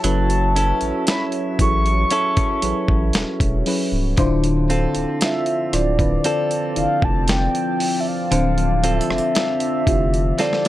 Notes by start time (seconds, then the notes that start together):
Already playing: F#3 C#4 E4 F#4 A4 C#5 E5
0.04 F#1 F#3 C#4 E4 A4 B4 A5, closed hi-hat
0.30 closed hi-hat
0.56 C#4 E4 A4, closed hi-hat
0.81 A1, closed hi-hat
1.07 E4 B5, snare, closed hi-hat
1.32 closed hi-hat
1.59 A1 F#3 C#4 E4 G#4 A4 C#6, kick, closed hi-hat
1.86 closed hi-hat
2.10 C#4 E4 A4, closed hi-hat
2.37 kick, closed hi-hat
2.62 A1 F#3 C#4 E4 G#4 B4, closed hi-hat
2.88 A1, kick
3.13 E1, snare, closed hi-hat
3.40 E1, kick, closed hi-hat
3.66 F#3 C#4 E4 G#4 B4, open hi-hat
3.92 C#1
4.17 D1 D3 F3 C4 D4 E4 F4 C5 D5 A5, kick, closed hi-hat
4.44 closed hi-hat
4.70 C4 F4 A4, closed hi-hat
4.95 D1, closed hi-hat
5.21 F4 E5, snare, closed hi-hat
5.46 closed hi-hat
5.73 D1 D3 D4 E4 F4 C5 D5, cross-stick, closed hi-hat
5.99 D3 D4 E4 F4 B4, kick, closed hi-hat
6.24 C4 F4 A4, closed hi-hat
6.51 closed hi-hat
6.76 F1 D3 D4 E4 F4 D5 F5, closed hi-hat
7.02 F1 A5, kick
7.28 G5, snare, closed hi-hat
7.55 closed hi-hat
7.80 open hi-hat
8.00 E5
8.08 F5
8.31 D1 D3 C4 D4 F4 C5, closed hi-hat
8.58 closed hi-hat
8.84 C4 F4 A4 E5, closed hi-hat
9.01 closed hi-hat
9.10 F1, cross-stick
9.18 closed hi-hat
9.35 F4, snare, closed hi-hat
9.60 closed hi-hat
9.87 F1 D3 D4 E4 F4 G4, kick, closed hi-hat
10.14 closed hi-hat
10.39 C4 F4 A4 D5, snare, closed hi-hat
10.53 snare